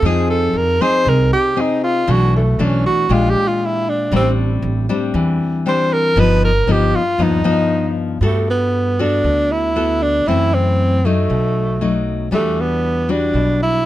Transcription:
0.02 upright bass F2, nylon-string guitar F3 C4 D#4 G#4, tenor saxophone G#4
0.30 tenor saxophone A4
0.53 upright bass F2, tenor saxophone A#4
0.81 nylon-string guitar C4 D#4 G#4, tenor saxophone C5
1.05 upright bass C2, nylon-string guitar C3, tenor saxophone A#4
1.33 tenor saxophone G4
1.57 nylon-string guitar C4 D#4 G#4
1.61 tenor saxophone D#4
1.84 tenor saxophone F4
2.07 upright bass B1, nylon-string guitar B2 E3 A3 D4, tenor saxophone F#4
2.37 tenor saxophone A3
2.59 upright bass B1, nylon-string guitar E3 A3 D4
2.63 tenor saxophone C#4
2.86 tenor saxophone F#4
3.09 upright bass A#1, nylon-string guitar A#2 G#3 D4 G4, tenor saxophone F4
3.30 tenor saxophone G4
3.48 tenor saxophone F4
3.65 tenor saxophone E4
3.89 tenor saxophone D4
4.12 upright bass A1, nylon-string guitar A2 G3 C4 D4
4.16 tenor saxophone C4
4.62 upright bass A1
4.89 nylon-string guitar G3 C4 D4
5.14 upright bass E2, nylon-string guitar E3
5.66 nylon-string guitar G3 C4 D4, tenor saxophone C5
5.93 tenor saxophone A#4
6.16 upright bass G1, nylon-string guitar G2 F3 B3 D#4
6.20 tenor saxophone B4
6.45 tenor saxophone A#4
6.67 upright bass G1, nylon-string guitar F3 B3 D#4
6.71 tenor saxophone G4
6.95 tenor saxophone F4
7.18 upright bass D#2, nylon-string guitar G2 F3 B3 D#4, tenor saxophone D#4
7.44 nylon-string guitar F3 B3 D#4
8.21 upright bass G2, nylon-string guitar G3 B3 F#4 A4, tenor saxophone A3
8.50 tenor saxophone B3
8.99 nylon-string guitar B3 F#4 A4, tenor saxophone D4
9.24 upright bass D2, nylon-string guitar D3
9.52 tenor saxophone E4
9.76 nylon-string guitar B3 F#4 A4
10.02 tenor saxophone D4
10.26 upright bass F#2, nylon-string guitar F#2 E3 A3 C4, tenor saxophone E4
10.54 tenor saxophone C4
11.05 nylon-string guitar F#3 A3 D#4, tenor saxophone A3
11.30 upright bass B1, nylon-string guitar B2
11.81 nylon-string guitar F#3 A3 D#4
12.31 upright bass E2, nylon-string guitar E3 G3 D4 F#4, tenor saxophone A3
12.60 tenor saxophone B3
13.09 nylon-string guitar G3 D4 F#4, tenor saxophone D4
13.34 upright bass B1, nylon-string guitar B2
13.63 tenor saxophone E4

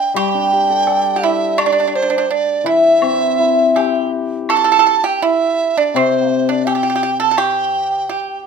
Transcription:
Already playing: pipa D4, dizi G5
0.14 hammered dulcimer G3, pipa G4, dizi G5, high woodblock
0.34 hammered dulcimer D4
0.52 hammered dulcimer G4
0.70 hammered dulcimer A4
0.87 hammered dulcimer D5, low woodblock
1.16 pipa G4
1.23 pipa E4, dizi E5
1.58 pipa D4, dizi D5, high woodblock
1.66 pipa D4
1.72 pipa D4
1.80 pipa D4
1.87 pipa D4
1.95 pipa D4, dizi C5
2.02 pipa D4
2.10 pipa D4
2.18 pipa D4
2.31 pipa D4, dizi D5
2.64 hammered dulcimer E3, pipa E4
2.68 dizi E5
3.02 hammered dulcimer C4, high woodblock
3.39 hammered dulcimer E4
3.76 hammered dulcimer G4, pipa G4, low woodblock
4.49 pipa A4, dizi A5, high woodblock
4.64 pipa A4
4.72 pipa A4
4.79 pipa A4
4.87 pipa A4
5.04 pipa G4, dizi G5
5.17 dizi G5
5.22 pipa E4, dizi E5
5.77 pipa D4, dizi D5
5.94 hammered dulcimer C3, pipa C4, dizi C5, high woodblock
6.29 pipa A3
6.49 pipa D4, dizi D5
6.67 pipa G4, dizi G5, low woodblock
6.75 pipa G4
6.83 pipa G4
6.90 pipa G4
6.96 pipa G4
7.03 pipa G4
7.20 pipa A4, dizi A5
7.31 pipa A4
7.38 pipa G4, dizi G5, high woodblock
8.09 pipa G4

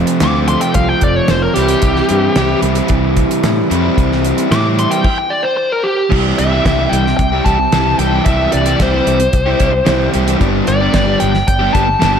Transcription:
Already playing: overdriven electric guitar F2 C3 F3 A3 C4 F4
0.07 closed hi-hat
0.20 picked electric bass D2, overdriven electric guitar F2 C3 F3 A3 C4 F4, lead electric guitar D6, snare, closed hi-hat
0.48 lead electric guitar C6, closed hi-hat
0.61 lead electric guitar G5, closed hi-hat
0.74 picked electric bass C2, lead electric guitar F5, kick, closed hi-hat
0.89 lead electric guitar G5
1.01 picked electric bass F1, lead electric guitar D5, kick, closed hi-hat
1.16 lead electric guitar C#5
1.28 picked electric bass F1, lead electric guitar C5, snare, closed hi-hat
1.42 lead electric guitar A#4
1.54 picked electric bass C2, overdriven electric guitar C3 E3 G3 C4 E4, lead electric guitar G4, closed hi-hat
1.68 closed hi-hat
1.82 picked electric bass C2, kick, closed hi-hat
1.96 snare
2.09 picked electric bass G2, closed hi-hat
2.35 picked electric bass C2, overdriven electric guitar C3 E3 G3 C4 E4, snare, closed hi-hat
2.63 picked electric bass C2, closed hi-hat
2.75 closed hi-hat
2.88 picked electric bass C2, kick, closed hi-hat
3.17 kick, closed hi-hat
3.31 closed hi-hat
3.44 picked electric bass A2, snare, closed hi-hat
3.70 picked electric bass F2, overdriven electric guitar C3 E3 G3 C4 E4, closed hi-hat
3.98 picked electric bass C2, kick, closed hi-hat
4.12 snare
4.25 closed hi-hat
4.38 closed hi-hat
4.50 picked electric bass A2, overdriven electric guitar C3 E3 G3 C4 E4, lead electric guitar D6, snare, closed hi-hat
4.79 lead electric guitar C6, closed hi-hat
4.91 lead electric guitar G5, closed hi-hat
5.04 lead electric guitar G5, kick, crash
5.18 lead electric guitar G5
5.30 lead electric guitar D5
5.43 lead electric guitar C5
5.57 lead electric guitar C5
5.72 lead electric guitar A#4
5.83 lead electric guitar G4
6.10 picked electric bass C2, overdriven electric guitar C3 E3 G3 E4 G4, kick, crash
6.39 picked electric bass C2, lead electric guitar E5, closed hi-hat
6.52 overdriven electric guitar G3 E4 G4
6.65 picked electric bass C2, overdriven electric guitar C3 E3 G3 E4 G4, kick, snare, closed hi-hat
6.78 overdriven electric guitar G3 E4 G4
6.90 picked electric bass C2, lead electric guitar G5, closed hi-hat
7.05 muted overdriven electric guitar stroke, snare
7.17 picked electric bass C2, lead electric guitar G5, kick, closed hi-hat
7.32 overdriven electric guitar G3 E4 G4
7.45 picked electric bass C2, overdriven electric guitar E3 G3 E4 G4, lead electric guitar A5, kick, closed hi-hat
7.58 muted overdriven electric guitar stroke
7.72 picked electric bass C2, overdriven electric guitar C3 E3 G3 E4 G4, snare, closed hi-hat
7.98 picked electric bass C2, overdriven electric guitar E3 G3 E4 G4, lead electric guitar G5, closed hi-hat
8.13 overdriven electric guitar G3 E4 G4
8.25 picked electric bass C2, overdriven electric guitar C3 E3 G3 E4 G4, lead electric guitar E5, kick, closed hi-hat
8.52 picked electric bass C2, lead electric guitar D5, closed hi-hat
8.66 overdriven electric guitar G3 E4 G4, closed hi-hat
8.80 picked electric bass C2, overdriven electric guitar C3 E3 G3 E4 G4, lead electric guitar C5, kick, snare, closed hi-hat
8.93 overdriven electric guitar G3 E4 G4
9.07 picked electric bass C2, closed hi-hat
9.20 muted overdriven electric guitar stroke, closed hi-hat
9.33 picked electric bass C2, kick, closed hi-hat
9.46 overdriven electric guitar G3 E4 G4
9.60 picked electric bass C2, overdriven electric guitar E3 G3 E4 G4, kick, closed hi-hat
9.73 muted overdriven electric guitar stroke
9.85 picked electric bass C2, overdriven electric guitar C3 E3 G3 E4 G4, snare, closed hi-hat
10.12 picked electric bass C2, overdriven electric guitar E3 G3 E4 G4, closed hi-hat
10.27 overdriven electric guitar G3 E4 G4, closed hi-hat
10.39 picked electric bass G1, overdriven electric guitar G2 D3 G3 B3 D4 G4, kick, closed hi-hat
10.67 picked electric bass G1, lead electric guitar D5, closed hi-hat
10.80 overdriven electric guitar G3 B3 D4 G4
10.93 picked electric bass G1, overdriven electric guitar G2 D3 G3 B3 D4 G4, kick, snare, closed hi-hat
11.06 overdriven electric guitar G3 B3 D4 G4
11.20 picked electric bass G1, lead electric guitar G5, closed hi-hat
11.34 muted overdriven electric guitar stroke, snare
11.48 picked electric bass G1, lead electric guitar G5, kick, closed hi-hat
11.59 overdriven electric guitar G3 B3 D4 G4
11.73 picked electric bass G1, overdriven electric guitar G3 B3 D4 G4, lead electric guitar A5, kick, closed hi-hat
11.88 muted overdriven electric guitar stroke
11.99 picked electric bass G1, overdriven electric guitar G2 D3 G3 B3 D4 G4, snare, closed hi-hat

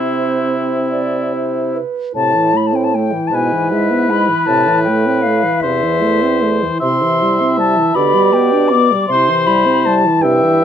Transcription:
Already playing: bassoon C3, french horn C4, oboe E4, clarinet C5, flute C5
0.90 clarinet D5
1.34 clarinet C5
1.76 clarinet B4
2.14 bassoon A2, french horn C3, clarinet E4, flute A5
2.35 french horn E3
2.54 french horn A3, flute B5
2.67 flute A5
2.73 french horn C4, flute G5
2.84 flute A5
2.94 french horn A3, flute G5
3.12 french horn E3
3.27 bassoon G#2, flute A5
3.32 french horn B2, oboe B4, flute G#5
3.53 french horn E3
3.72 french horn G#3, flute E5
3.91 french horn B3
4.10 french horn G#3, flute B5
4.29 french horn E3
4.46 bassoon A2, french horn C3, flute A5
4.67 french horn E3
4.84 flute G5
4.88 french horn A3
5.07 french horn C4
5.22 french horn A3, flute F5
5.45 french horn E3
5.60 bassoon E2, oboe C5, flute E5
5.65 french horn C3
5.83 french horn E3
6.02 french horn A3
6.22 french horn C4
6.42 french horn A3
6.63 french horn E3
6.80 bassoon C3, french horn C3, clarinet E4, oboe E5, flute C6
7.03 french horn E3
7.23 french horn G3
7.41 french horn C4
7.59 french horn G3, flute A5
7.77 french horn E3
7.94 bassoon B2, french horn D3, clarinet G4, oboe D5, flute B5
8.15 french horn G3
8.33 french horn B3, flute G5
8.52 french horn D4
8.68 flute D6
8.72 french horn B3
8.92 french horn G3
9.08 bassoon C3, french horn C3, clarinet E4, oboe C5, flute C6
9.29 french horn E3
9.46 french horn G3, flute B5
9.66 french horn C4
9.85 french horn G3, flute A5
10.06 french horn E3
10.21 bassoon G2, french horn C3, oboe E5, flute G5
10.43 french horn E3

